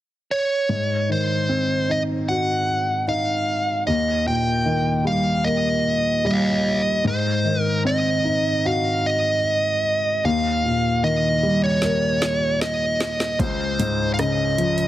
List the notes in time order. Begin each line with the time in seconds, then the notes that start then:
0.31 C#5
0.69 G#2
1.09 D#3 C5
1.49 C4
1.89 D#4 D#5
2.29 F#4 F#5
3.08 D#4 F5
3.87 D#2 D#5
4.26 A#2 G5
4.65 D#3
5.05 G3 F5
5.44 A#3 D#5
6.25 G3 D#5 F5
7.04 G#2 C5
7.45 D#3
7.61 A#4
7.85 C4 D#5
8.25 D#4
8.65 F#4 F5
9.06 D#5
10.25 D#2 F5
10.64 A#2
11.03 D#3 D#5
11.43 G3
11.64 C#5
11.82 A#3, snare
12.22 snare
12.61 D#5, snare
13.00 snare
13.20 snare
13.39 C#2 C5, kick, closed hi-hat
13.79 G#2, closed hi-hat
14.14 F5
14.19 C#3 D#5, cross-stick, closed hi-hat
14.58 F3, closed hi-hat
14.78 closed hi-hat